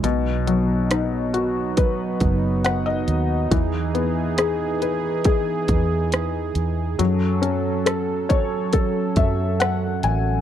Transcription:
<<
  \new Staff \with { instrumentName = "Felt piano" } { \time 4/4 \key b \mixolydian \tempo 4 = 69 << { r2. fis''16 dis''8. | r1 | r2 r8 e''8 fis''8 gis''8 | } \\ { b,8 fis8 dis'8 fis'8 b'2 | e8 b8 gis'8 b'8 gis'2 | fis8 cis'8 a'8 cis''8 a'2 | } >> }
  \new Staff \with { instrumentName = "Analog synth pad" } { \time 4/4 \key b \mixolydian <fis b dis'>1 | <e gis'>1 | <fis cis' a'>1 | }
  \new Staff \with { instrumentName = "Fingered electric bass" } { \clef bass \time 4/4 \key b \mixolydian b,,2~ b,,8 fis,,4 dis,8 | e,2~ e,8 e,4 e,8 | fis,2~ fis,8 fis,4 a,,8 | }
  \new DrumStaff \with { instrumentName = "Drums" } \drummode { \time 4/4 hh8 hh8 <hh ss>8 hh8 <hh bd>8 <hh bd>8 <hh ss>8 hh8 | <hh bd>8 hh8 <hh ss>8 hh8 <hh bd>8 <hh bd>8 <hh ss>8 hh8 | hh8 hh8 <hh ss>8 <hh bd>8 <hh bd>8 <hh bd>8 <hh ss>8 hh8 | }
>>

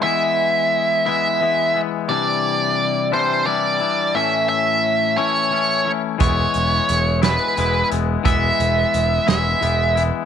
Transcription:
<<
  \new Staff \with { instrumentName = "Lead electric guitar" } { \time 6/8 \key e \major \tempo 4. = 58 e''4. e''4 r8 | d''4. c''8 d''4 | e''8 e''4 cis''4 r8 | cis''4. b'4 r8 |
e''4. e''4 r8 | }
  \new Staff \with { instrumentName = "Clean electric guitar" } { \time 6/8 \key e \major <e gis b e'>4. <e gis b e'>8 <e gis b e'>8 <gis b e'>8 | <c e g d' e'>4. <c e g d' e'>8 <e g d' e'>8 <g d' e'>8 | <a, e a cis' e'>4. <a, e a cis' e'>8 <e a cis' e'>8 <a cis' e'>8 | <e gis b e'>4. <e gis b e'>8 <e gis b e'>8 <gis b e'>8 |
<e gis b e'>4. <e gis b e'>8 <e gis b e'>8 <gis b e'>8 | }
  \new Staff \with { instrumentName = "Picked electric bass" } { \clef bass \time 6/8 \key e \major r2. | r2. | r2. | e,,8 e,,8 e,,4 e,,8 e,,8 |
e,,8 e,,8 e,,8 e,,8 e,,4 | }
  \new DrumStaff \with { instrumentName = "Drums" } \drummode { \time 6/8 r4. r4. | r4. r4. | r4. r4. | <hh bd>8 hh8 hh8 <hh sn>8 hh8 hh8 |
<hh bd>8 hh8 hh8 <hh sn>8 hh8 hh8 | }
>>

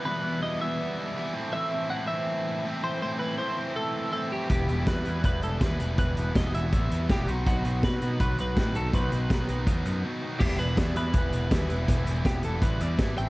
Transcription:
<<
  \new Staff \with { instrumentName = "Clean electric guitar" } { \time 4/4 \key e \minor \tempo 4 = 162 b'4 dis''8 e''2 r8 | e''4 fis''8 e''2 c''8 | c''8 b'8 c''4 a'4 a'8 g'8 | g'4 b'4 b'8 a'8 b'4 |
b'4 dis''8 e''4. g'8 fis'8 | fis'4 b'4 b'8 b'4 a'8 | b'2. r4 | g'8 b'8 d''8 b'2~ b'8~ |
b'8 r8 g'8 a'8 b'8 d''4 g''8 | }
  \new Staff \with { instrumentName = "Overdriven electric guitar" } { \time 4/4 \key e \minor <e, b, e g b e'>8 <e g b e'>8 <e, b, e g b e'>8 <e g b e'>4. <e g b e'>8 <a, e a c' e'>8 | <a, e a c' e'>8 <a c' e'>8 <a, e a c' e'>8 <a c' e'>4. <e a c' e'>8 <a c' e'>8 | <a, e a c' e'>8 <a c' e'>8 <a, e a c' e'>8 <a c' e'>4. <e a c' e'>8 <a c' e'>8 | <e, b, e g b e'>8 <e g b e'>8 <e, b, e g b e'>8 <e g b e'>4. <e g b e'>8 <e g b e'>8 |
<e, b, e g b e'>8 <e g b e'>8 <e, b, e g b e'>8 <e g b e'>4. <e g b e'>8 <b, fis b dis' fis'>8 | <b, fis b dis' fis'>8 <b dis' fis'>8 <b, fis b dis' fis'>8 <b dis' fis'>4. <fis b dis' fis'>8 <b dis' fis'>8 | <b, fis b dis' fis'>8 <b dis' fis'>8 <b, fis b dis' fis'>8 <b dis' fis'>4. <fis b dis' fis'>8 <b dis' fis'>8 | <e, b, e g b e'>8 <e g b e'>8 <e, b, e g b e'>8 <e g b e'>4. <e g b e'>8 <e g b e'>8 |
<e, b, e g b e'>8 <e g b e'>8 <e, b, e g b e'>8 <e g b e'>4. <e g b e'>8 <a, e a c' e'>8 | }
  \new Staff \with { instrumentName = "Overdriven electric guitar" } { \time 4/4 \key e \minor <e g b e'>8 <g b e'>8 <e g b e'>8 <g b e'>4. <e g b e'>8 <a, e a c' e'>8 | <a, e a c' e'>8 <a c' e'>8 <e a c' e'>8 <a c' e'>4. <a, e a c' e'>8 <a c' e'>8 | <a, e a c' e'>8 <a c' e'>8 <e a c' e'>8 <a c' e'>4. <a, e a c' e'>8 <a c' e'>8 | <e g b e'>8 <g b e'>8 <e g b e'>8 <g b e'>4. <e g b e'>8 <g b e'>8 |
<e g b e'>8 <g b e'>8 <e g b e'>8 <g b e'>4. <e g b e'>8 <b, dis fis b dis'>8 | <b, dis fis b dis'>8 <fis b dis'>8 <dis fis b dis'>8 <fis b dis'>4. <b, dis fis b dis'>8 <fis b dis'>8 | <b, dis fis b dis'>8 <fis b dis'>8 <dis fis b dis'>8 <fis b dis'>4. <b, dis fis b dis'>8 <fis b dis'>8 | <e g b e'>8 <g b e'>8 <e g b e'>8 <g b e'>4. <e g b e'>8 <g b e'>8 |
<e g b e'>8 <g b e'>8 <e g b e'>8 <g b e'>4. <e g b e'>8 <a, e a c' e'>8 | }
  \new Staff \with { instrumentName = "Picked electric bass" } { \clef bass \time 4/4 \key e \minor r1 | r1 | r1 | e,,8 e,,8 e,8 e,8 e,,8 e,,8 dis,8 e,,8 |
e,,8 e,,8 e,,8 e,,8 a,,8 e,8 e,,8 b,,8 | b,,8 b,,8 b,8 b,8 b,,8 b,,8 a,8 b,,8 | b,,8 b,,8 r8 b,,8 e,8 fis,8 r4 | e,,8 e,,8 e,8 e,8 e,,8 e,,8 dis,8 e,,8 |
e,,8 e,,8 e,,8 e,,8 a,,8 e,8 gis,,8 a,,8 | }
  \new DrumStaff \with { instrumentName = "Drums" } \drummode { \time 4/4 r4 r4 r4 r4 | r4 r4 r4 r4 | r4 r4 r4 r4 | <hh bd>8 hh8 <hh bd sn>8 hh8 <hh bd>8 hh8 <hh bd sn>8 hh8 |
<hh bd>8 hh8 <hh bd sn>8 hh8 <hh bd>8 hh8 <hh bd sn>8 hh8 | <hh bd>8 hh8 <hh bd sn>8 hh8 <hh bd>8 hh8 <hh bd sn>8 hh8 | <hh bd>8 hh8 <hh bd sn>8 hh8 <hh bd>8 hh8 r4 | <cymc bd>8 hh8 <hh bd sn>8 hh8 <hh bd>8 hh8 <hh bd sn>8 hh8 |
<hh bd>8 hh8 <hh bd sn>8 hh8 <hh bd>8 hh8 <hh bd sn>8 hh8 | }
>>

